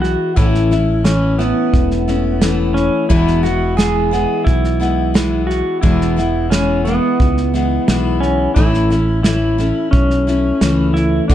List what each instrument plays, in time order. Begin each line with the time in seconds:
Already playing: fingered electric bass B1, steel-string acoustic guitar E3 G#3 B3 E4
0.02 pedal steel guitar F#4, snare
0.36 fingered electric bass A1, steel-string acoustic guitar A2 E3 A3 C#4 E4, pedal steel guitar E4, kick, snare
0.55 snare
0.71 steel-string acoustic guitar A3 C#4 E4, snare
1.04 steel-string acoustic guitar E3 A3 C#4 E4, pedal steel guitar C#4, snare, hi-hat pedal
1.39 steel-string acoustic guitar A3 C#4 E4, pedal steel guitar B3, snare
1.73 fingered electric bass E1, kick, snare
1.91 snare
2.08 steel-string acoustic guitar A3 C#4 E4, snare
2.41 steel-string acoustic guitar E3 A3 C#4 E4, snare, hi-hat pedal
2.74 pedal steel guitar C#4, snare
3.09 fingered electric bass E1, steel-string acoustic guitar E2 B2 E3 G#3 B3 E4, pedal steel guitar E4, kick, snare
3.27 snare
3.43 steel-string acoustic guitar E3 G#3 B3 E4, pedal steel guitar F#4, snare
3.77 steel-string acoustic guitar E3 G#3 B3 E4, pedal steel guitar G#4, snare, hi-hat pedal
4.11 steel-string acoustic guitar E3 G#3 B3 E4, snare
4.45 fingered electric bass B1, pedal steel guitar E4, kick, snare
4.64 snare
4.80 steel-string acoustic guitar E3 G#3 B3 E4, snare
5.14 steel-string acoustic guitar E3 G#3 B3 E4, snare, hi-hat pedal
5.47 pedal steel guitar F#4, snare
5.81 fingered electric bass E1, steel-string acoustic guitar E2 B2 E3 G#3 B3 E4, pedal steel guitar E4, kick, snare
6.01 snare
6.17 steel-string acoustic guitar E3 G#3 B3 E4, snare
6.50 steel-string acoustic guitar E3 G#3 B3 E4, pedal steel guitar C#4, snare, hi-hat pedal
6.85 steel-string acoustic guitar E3 G#3 B3 E4, pedal steel guitar B3, snare
7.20 fingered electric bass C#2, kick, snare
7.37 snare
7.54 steel-string acoustic guitar E3 G#3 B3 E4, snare
7.88 fingered electric bass B1, steel-string acoustic guitar E3 G#3 B3 E4, snare, hi-hat pedal
8.21 pedal steel guitar C#4, snare
8.54 fingered electric bass A1, steel-string acoustic guitar A2 E3 A3 C#4 E4, pedal steel guitar E4, kick, snare
8.74 snare
8.90 steel-string acoustic guitar A3 C#4 E4, snare
9.23 steel-string acoustic guitar E3 A3 C#4 E4, pedal steel guitar E4, snare, hi-hat pedal
9.58 steel-string acoustic guitar A3 C#4 E4, snare
9.91 fingered electric bass B1, pedal steel guitar C#4, kick, snare
10.10 snare
10.27 steel-string acoustic guitar A3 C#4 E4, snare
10.61 fingered electric bass C#2, steel-string acoustic guitar E3 A3 C#4 E4, snare, hi-hat pedal
10.94 pedal steel guitar E4, snare
11.28 fingered electric bass D2, steel-string acoustic guitar D3 A3 D4 F#4, pedal steel guitar D4, kick, snare